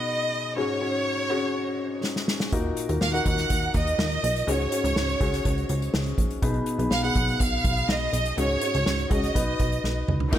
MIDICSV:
0, 0, Header, 1, 6, 480
1, 0, Start_track
1, 0, Tempo, 487805
1, 565, Time_signature, 4, 2, 24, 8
1, 10219, End_track
2, 0, Start_track
2, 0, Title_t, "Violin section"
2, 0, Program_c, 0, 48
2, 0, Note_on_c, 0, 75, 81
2, 564, Note_on_c, 0, 73, 78
2, 570, Note_off_c, 0, 75, 0
2, 1965, Note_off_c, 0, 73, 0
2, 2972, Note_on_c, 0, 77, 83
2, 3080, Note_off_c, 0, 77, 0
2, 3089, Note_on_c, 0, 78, 85
2, 3198, Note_off_c, 0, 78, 0
2, 3220, Note_on_c, 0, 78, 84
2, 3659, Note_off_c, 0, 78, 0
2, 3697, Note_on_c, 0, 75, 87
2, 4411, Note_off_c, 0, 75, 0
2, 4422, Note_on_c, 0, 73, 81
2, 5852, Note_off_c, 0, 73, 0
2, 6810, Note_on_c, 0, 77, 89
2, 6919, Note_off_c, 0, 77, 0
2, 6932, Note_on_c, 0, 78, 90
2, 7263, Note_off_c, 0, 78, 0
2, 7294, Note_on_c, 0, 77, 87
2, 7768, Note_off_c, 0, 77, 0
2, 7778, Note_on_c, 0, 75, 88
2, 8250, Note_off_c, 0, 75, 0
2, 8261, Note_on_c, 0, 73, 88
2, 8932, Note_off_c, 0, 73, 0
2, 8974, Note_on_c, 0, 75, 79
2, 9927, Note_off_c, 0, 75, 0
2, 10219, End_track
3, 0, Start_track
3, 0, Title_t, "Upright piano"
3, 0, Program_c, 1, 0
3, 0, Control_c, 1, 64, 127
3, 0, Note_on_c, 1, 47, 61
3, 0, Note_on_c, 1, 59, 61
3, 0, Note_on_c, 1, 63, 53
3, 0, Note_on_c, 1, 68, 74
3, 553, Note_on_c, 1, 61, 65
3, 558, Note_on_c, 1, 44, 58
3, 560, Note_on_c, 1, 66, 57
3, 564, Note_off_c, 1, 68, 0
3, 564, Note_on_c, 1, 68, 72
3, 578, Control_c, 1, 64, 0
3, 585, Note_off_c, 1, 59, 0
3, 586, Note_off_c, 1, 47, 0
3, 586, Note_off_c, 1, 63, 0
3, 743, Note_off_c, 1, 61, 0
3, 746, Note_off_c, 1, 66, 0
3, 748, Note_off_c, 1, 68, 0
3, 752, Control_c, 1, 64, 127
3, 795, Note_on_c, 1, 61, 58
3, 801, Note_on_c, 1, 66, 51
3, 804, Note_on_c, 1, 68, 59
3, 1167, Note_off_c, 1, 61, 0
3, 1170, Note_off_c, 1, 66, 0
3, 1172, Note_off_c, 1, 68, 0
3, 1242, Note_off_c, 1, 44, 0
3, 1277, Note_on_c, 1, 61, 78
3, 1280, Note_on_c, 1, 66, 67
3, 1284, Note_on_c, 1, 68, 75
3, 2015, Note_off_c, 1, 61, 0
3, 2016, Note_off_c, 1, 66, 0
3, 2018, Note_off_c, 1, 68, 0
3, 2482, Note_on_c, 1, 63, 71
3, 2485, Note_on_c, 1, 46, 65
3, 2487, Note_on_c, 1, 66, 69
3, 2489, Note_on_c, 1, 70, 83
3, 2498, Control_c, 1, 64, 0
3, 2665, Control_c, 1, 64, 127
3, 2759, Note_off_c, 1, 63, 0
3, 2761, Note_off_c, 1, 66, 0
3, 2762, Note_off_c, 1, 70, 0
3, 2840, Note_on_c, 1, 63, 55
3, 2842, Note_on_c, 1, 66, 53
3, 2848, Note_on_c, 1, 70, 60
3, 3025, Note_off_c, 1, 63, 0
3, 3026, Note_off_c, 1, 66, 0
3, 3030, Note_off_c, 1, 70, 0
3, 3076, Note_on_c, 1, 63, 58
3, 3080, Note_on_c, 1, 66, 57
3, 3085, Note_on_c, 1, 70, 72
3, 3165, Note_off_c, 1, 46, 0
3, 3814, Note_off_c, 1, 63, 0
3, 3816, Note_off_c, 1, 66, 0
3, 3818, Note_off_c, 1, 70, 0
3, 4398, Note_on_c, 1, 61, 60
3, 4403, Note_on_c, 1, 66, 53
3, 4404, Note_on_c, 1, 44, 54
3, 4407, Note_on_c, 1, 68, 70
3, 4416, Control_c, 1, 64, 0
3, 4585, Note_off_c, 1, 61, 0
3, 4587, Note_off_c, 1, 66, 0
3, 4589, Note_off_c, 1, 68, 0
3, 4603, Control_c, 1, 64, 127
3, 4639, Note_on_c, 1, 61, 52
3, 4644, Note_on_c, 1, 66, 48
3, 4649, Note_on_c, 1, 68, 61
3, 5008, Note_off_c, 1, 61, 0
3, 5011, Note_off_c, 1, 66, 0
3, 5013, Note_off_c, 1, 68, 0
3, 5084, Note_off_c, 1, 44, 0
3, 5120, Note_on_c, 1, 61, 73
3, 5123, Note_on_c, 1, 66, 64
3, 5129, Note_on_c, 1, 68, 85
3, 5856, Note_off_c, 1, 61, 0
3, 5857, Note_off_c, 1, 66, 0
3, 5860, Note_off_c, 1, 68, 0
3, 6318, Note_on_c, 1, 59, 74
3, 6321, Note_on_c, 1, 47, 62
3, 6324, Note_on_c, 1, 63, 72
3, 6326, Note_on_c, 1, 68, 78
3, 6338, Control_c, 1, 64, 0
3, 6506, Control_c, 1, 64, 127
3, 6596, Note_off_c, 1, 59, 0
3, 6599, Note_off_c, 1, 63, 0
3, 6600, Note_off_c, 1, 68, 0
3, 6676, Note_on_c, 1, 59, 63
3, 6681, Note_on_c, 1, 63, 54
3, 6685, Note_on_c, 1, 68, 54
3, 6863, Note_off_c, 1, 59, 0
3, 6865, Note_off_c, 1, 63, 0
3, 6868, Note_off_c, 1, 68, 0
3, 6916, Note_on_c, 1, 59, 65
3, 6920, Note_on_c, 1, 63, 54
3, 6924, Note_on_c, 1, 68, 73
3, 7003, Note_off_c, 1, 47, 0
3, 7653, Note_off_c, 1, 59, 0
3, 7656, Note_off_c, 1, 63, 0
3, 7657, Note_off_c, 1, 68, 0
3, 8237, Note_on_c, 1, 61, 62
3, 8241, Note_on_c, 1, 44, 54
3, 8243, Note_on_c, 1, 66, 58
3, 8247, Note_on_c, 1, 68, 69
3, 8255, Control_c, 1, 64, 0
3, 8423, Note_off_c, 1, 61, 0
3, 8426, Note_off_c, 1, 66, 0
3, 8428, Note_off_c, 1, 68, 0
3, 8441, Control_c, 1, 64, 127
3, 8476, Note_on_c, 1, 61, 53
3, 8480, Note_on_c, 1, 66, 50
3, 8485, Note_on_c, 1, 68, 59
3, 8846, Note_off_c, 1, 61, 0
3, 8848, Note_off_c, 1, 66, 0
3, 8850, Note_off_c, 1, 68, 0
3, 8922, Note_off_c, 1, 44, 0
3, 8949, Note_on_c, 1, 61, 54
3, 8954, Note_on_c, 1, 66, 58
3, 8960, Note_on_c, 1, 68, 66
3, 9182, Note_off_c, 1, 66, 0
3, 9191, Note_on_c, 1, 63, 63
3, 9196, Note_off_c, 1, 61, 0
3, 9197, Note_on_c, 1, 66, 53
3, 9199, Note_on_c, 1, 71, 73
3, 9201, Note_off_c, 1, 68, 0
3, 9214, Control_c, 1, 64, 0
3, 9381, Control_c, 1, 64, 127
3, 9964, Note_off_c, 1, 63, 0
3, 9967, Note_off_c, 1, 66, 0
3, 9968, Note_off_c, 1, 71, 0
3, 10157, Note_on_c, 1, 63, 81
3, 10160, Note_on_c, 1, 66, 77
3, 10161, Note_on_c, 1, 46, 70
3, 10166, Note_on_c, 1, 70, 93
3, 10176, Control_c, 1, 64, 0
3, 10219, Note_off_c, 1, 46, 0
3, 10219, Note_off_c, 1, 63, 0
3, 10219, Note_off_c, 1, 66, 0
3, 10219, Note_off_c, 1, 70, 0
3, 10219, End_track
4, 0, Start_track
4, 0, Title_t, "String section"
4, 0, Program_c, 2, 48
4, 10164, Note_on_c, 2, 58, 65
4, 10166, Note_on_c, 2, 63, 73
4, 10167, Note_on_c, 2, 54, 66
4, 10219, Note_off_c, 2, 54, 0
4, 10219, Note_off_c, 2, 58, 0
4, 10219, Note_off_c, 2, 63, 0
4, 10219, End_track
5, 0, Start_track
5, 0, Title_t, "Analog synth bass"
5, 0, Program_c, 3, 38
5, 2484, Note_on_c, 3, 39, 100
5, 2681, Note_off_c, 3, 39, 0
5, 2844, Note_on_c, 3, 39, 88
5, 2942, Note_off_c, 3, 39, 0
5, 2963, Note_on_c, 3, 39, 87
5, 3160, Note_off_c, 3, 39, 0
5, 3202, Note_on_c, 3, 39, 98
5, 3400, Note_off_c, 3, 39, 0
5, 3446, Note_on_c, 3, 39, 74
5, 3642, Note_off_c, 3, 39, 0
5, 3682, Note_on_c, 3, 39, 96
5, 3880, Note_off_c, 3, 39, 0
5, 3921, Note_on_c, 3, 39, 96
5, 4119, Note_off_c, 3, 39, 0
5, 4165, Note_on_c, 3, 35, 82
5, 4361, Note_off_c, 3, 35, 0
5, 4401, Note_on_c, 3, 37, 110
5, 4599, Note_off_c, 3, 37, 0
5, 4761, Note_on_c, 3, 37, 94
5, 4861, Note_off_c, 3, 37, 0
5, 4879, Note_on_c, 3, 37, 83
5, 5078, Note_off_c, 3, 37, 0
5, 5122, Note_on_c, 3, 37, 86
5, 5320, Note_off_c, 3, 37, 0
5, 5364, Note_on_c, 3, 37, 97
5, 5560, Note_off_c, 3, 37, 0
5, 5603, Note_on_c, 3, 37, 89
5, 5800, Note_off_c, 3, 37, 0
5, 5841, Note_on_c, 3, 37, 91
5, 6039, Note_off_c, 3, 37, 0
5, 6082, Note_on_c, 3, 34, 67
5, 6279, Note_off_c, 3, 34, 0
5, 6322, Note_on_c, 3, 35, 108
5, 6519, Note_off_c, 3, 35, 0
5, 6676, Note_on_c, 3, 35, 90
5, 6777, Note_off_c, 3, 35, 0
5, 6795, Note_on_c, 3, 35, 76
5, 6995, Note_off_c, 3, 35, 0
5, 7041, Note_on_c, 3, 35, 90
5, 7238, Note_off_c, 3, 35, 0
5, 7284, Note_on_c, 3, 35, 87
5, 7480, Note_off_c, 3, 35, 0
5, 7523, Note_on_c, 3, 35, 89
5, 7720, Note_off_c, 3, 35, 0
5, 7760, Note_on_c, 3, 35, 96
5, 7958, Note_off_c, 3, 35, 0
5, 7997, Note_on_c, 3, 35, 81
5, 8196, Note_off_c, 3, 35, 0
5, 8241, Note_on_c, 3, 37, 96
5, 8438, Note_off_c, 3, 37, 0
5, 8606, Note_on_c, 3, 37, 84
5, 8703, Note_off_c, 3, 37, 0
5, 8725, Note_on_c, 3, 37, 76
5, 8921, Note_off_c, 3, 37, 0
5, 8963, Note_on_c, 3, 37, 95
5, 9159, Note_off_c, 3, 37, 0
5, 9204, Note_on_c, 3, 35, 85
5, 9400, Note_off_c, 3, 35, 0
5, 9443, Note_on_c, 3, 35, 87
5, 9639, Note_off_c, 3, 35, 0
5, 9683, Note_on_c, 3, 35, 91
5, 9879, Note_off_c, 3, 35, 0
5, 9920, Note_on_c, 3, 37, 73
5, 10117, Note_off_c, 3, 37, 0
5, 10161, Note_on_c, 3, 39, 112
5, 10219, Note_off_c, 3, 39, 0
5, 10219, End_track
6, 0, Start_track
6, 0, Title_t, "Drums"
6, 2003, Note_on_c, 9, 38, 52
6, 2101, Note_off_c, 9, 38, 0
6, 2125, Note_on_c, 9, 38, 49
6, 2224, Note_off_c, 9, 38, 0
6, 2243, Note_on_c, 9, 38, 72
6, 2342, Note_off_c, 9, 38, 0
6, 2363, Note_on_c, 9, 38, 74
6, 2461, Note_off_c, 9, 38, 0
6, 2484, Note_on_c, 9, 42, 71
6, 2485, Note_on_c, 9, 36, 92
6, 2582, Note_off_c, 9, 42, 0
6, 2583, Note_off_c, 9, 36, 0
6, 2722, Note_on_c, 9, 42, 67
6, 2820, Note_off_c, 9, 42, 0
6, 2845, Note_on_c, 9, 42, 45
6, 2943, Note_off_c, 9, 42, 0
6, 2961, Note_on_c, 9, 38, 80
6, 3060, Note_off_c, 9, 38, 0
6, 3088, Note_on_c, 9, 42, 30
6, 3186, Note_off_c, 9, 42, 0
6, 3204, Note_on_c, 9, 36, 69
6, 3205, Note_on_c, 9, 42, 59
6, 3302, Note_off_c, 9, 36, 0
6, 3304, Note_off_c, 9, 42, 0
6, 3324, Note_on_c, 9, 38, 22
6, 3325, Note_on_c, 9, 42, 42
6, 3423, Note_off_c, 9, 38, 0
6, 3423, Note_off_c, 9, 42, 0
6, 3444, Note_on_c, 9, 42, 72
6, 3446, Note_on_c, 9, 36, 72
6, 3543, Note_off_c, 9, 42, 0
6, 3544, Note_off_c, 9, 36, 0
6, 3561, Note_on_c, 9, 42, 28
6, 3660, Note_off_c, 9, 42, 0
6, 3679, Note_on_c, 9, 42, 61
6, 3684, Note_on_c, 9, 36, 70
6, 3778, Note_off_c, 9, 42, 0
6, 3782, Note_off_c, 9, 36, 0
6, 3808, Note_on_c, 9, 42, 41
6, 3906, Note_off_c, 9, 42, 0
6, 3926, Note_on_c, 9, 38, 110
6, 4024, Note_off_c, 9, 38, 0
6, 4042, Note_on_c, 9, 42, 26
6, 4140, Note_off_c, 9, 42, 0
6, 4171, Note_on_c, 9, 42, 68
6, 4269, Note_off_c, 9, 42, 0
6, 4291, Note_on_c, 9, 42, 43
6, 4389, Note_off_c, 9, 42, 0
6, 4409, Note_on_c, 9, 42, 76
6, 4508, Note_off_c, 9, 42, 0
6, 4524, Note_on_c, 9, 42, 25
6, 4623, Note_off_c, 9, 42, 0
6, 4643, Note_on_c, 9, 42, 73
6, 4741, Note_off_c, 9, 42, 0
6, 4769, Note_on_c, 9, 42, 45
6, 4868, Note_off_c, 9, 42, 0
6, 4883, Note_on_c, 9, 38, 80
6, 4982, Note_off_c, 9, 38, 0
6, 5006, Note_on_c, 9, 42, 27
6, 5105, Note_off_c, 9, 42, 0
6, 5123, Note_on_c, 9, 36, 83
6, 5124, Note_on_c, 9, 42, 58
6, 5221, Note_off_c, 9, 36, 0
6, 5222, Note_off_c, 9, 42, 0
6, 5248, Note_on_c, 9, 38, 23
6, 5249, Note_on_c, 9, 42, 38
6, 5347, Note_off_c, 9, 38, 0
6, 5347, Note_off_c, 9, 42, 0
6, 5365, Note_on_c, 9, 36, 73
6, 5365, Note_on_c, 9, 42, 66
6, 5463, Note_off_c, 9, 36, 0
6, 5463, Note_off_c, 9, 42, 0
6, 5487, Note_on_c, 9, 42, 30
6, 5586, Note_off_c, 9, 42, 0
6, 5601, Note_on_c, 9, 42, 55
6, 5699, Note_off_c, 9, 42, 0
6, 5728, Note_on_c, 9, 42, 37
6, 5827, Note_off_c, 9, 42, 0
6, 5842, Note_on_c, 9, 38, 98
6, 5940, Note_off_c, 9, 38, 0
6, 5961, Note_on_c, 9, 42, 30
6, 6060, Note_off_c, 9, 42, 0
6, 6079, Note_on_c, 9, 36, 79
6, 6083, Note_on_c, 9, 42, 59
6, 6178, Note_off_c, 9, 36, 0
6, 6181, Note_off_c, 9, 42, 0
6, 6204, Note_on_c, 9, 42, 44
6, 6302, Note_off_c, 9, 42, 0
6, 6321, Note_on_c, 9, 42, 75
6, 6322, Note_on_c, 9, 36, 99
6, 6420, Note_off_c, 9, 36, 0
6, 6420, Note_off_c, 9, 42, 0
6, 6434, Note_on_c, 9, 42, 28
6, 6532, Note_off_c, 9, 42, 0
6, 6555, Note_on_c, 9, 42, 68
6, 6653, Note_off_c, 9, 42, 0
6, 6684, Note_on_c, 9, 42, 43
6, 6783, Note_off_c, 9, 42, 0
6, 6799, Note_on_c, 9, 38, 81
6, 6897, Note_off_c, 9, 38, 0
6, 7041, Note_on_c, 9, 36, 77
6, 7041, Note_on_c, 9, 42, 60
6, 7139, Note_off_c, 9, 36, 0
6, 7139, Note_off_c, 9, 42, 0
6, 7170, Note_on_c, 9, 42, 43
6, 7268, Note_off_c, 9, 42, 0
6, 7283, Note_on_c, 9, 36, 76
6, 7287, Note_on_c, 9, 42, 73
6, 7382, Note_off_c, 9, 36, 0
6, 7386, Note_off_c, 9, 42, 0
6, 7521, Note_on_c, 9, 42, 60
6, 7522, Note_on_c, 9, 36, 80
6, 7620, Note_off_c, 9, 42, 0
6, 7621, Note_off_c, 9, 36, 0
6, 7645, Note_on_c, 9, 42, 41
6, 7743, Note_off_c, 9, 42, 0
6, 7762, Note_on_c, 9, 38, 107
6, 7860, Note_off_c, 9, 38, 0
6, 8002, Note_on_c, 9, 42, 62
6, 8101, Note_off_c, 9, 42, 0
6, 8121, Note_on_c, 9, 42, 43
6, 8220, Note_off_c, 9, 42, 0
6, 8244, Note_on_c, 9, 42, 68
6, 8342, Note_off_c, 9, 42, 0
6, 8357, Note_on_c, 9, 42, 28
6, 8455, Note_off_c, 9, 42, 0
6, 8476, Note_on_c, 9, 42, 71
6, 8574, Note_off_c, 9, 42, 0
6, 8606, Note_on_c, 9, 42, 46
6, 8705, Note_off_c, 9, 42, 0
6, 8721, Note_on_c, 9, 38, 85
6, 8819, Note_off_c, 9, 38, 0
6, 8845, Note_on_c, 9, 42, 30
6, 8943, Note_off_c, 9, 42, 0
6, 8961, Note_on_c, 9, 36, 82
6, 8962, Note_on_c, 9, 42, 60
6, 9060, Note_off_c, 9, 36, 0
6, 9061, Note_off_c, 9, 42, 0
6, 9087, Note_on_c, 9, 38, 23
6, 9087, Note_on_c, 9, 42, 38
6, 9185, Note_off_c, 9, 38, 0
6, 9186, Note_off_c, 9, 42, 0
6, 9204, Note_on_c, 9, 36, 72
6, 9208, Note_on_c, 9, 42, 76
6, 9303, Note_off_c, 9, 36, 0
6, 9306, Note_off_c, 9, 42, 0
6, 9441, Note_on_c, 9, 42, 54
6, 9442, Note_on_c, 9, 36, 70
6, 9540, Note_off_c, 9, 42, 0
6, 9541, Note_off_c, 9, 36, 0
6, 9566, Note_on_c, 9, 42, 39
6, 9665, Note_off_c, 9, 42, 0
6, 9684, Note_on_c, 9, 38, 48
6, 9782, Note_off_c, 9, 38, 0
6, 9923, Note_on_c, 9, 45, 74
6, 10021, Note_off_c, 9, 45, 0
6, 10040, Note_on_c, 9, 43, 69
6, 10138, Note_off_c, 9, 43, 0
6, 10160, Note_on_c, 9, 49, 102
6, 10161, Note_on_c, 9, 36, 106
6, 10219, Note_off_c, 9, 36, 0
6, 10219, Note_off_c, 9, 49, 0
6, 10219, End_track
0, 0, End_of_file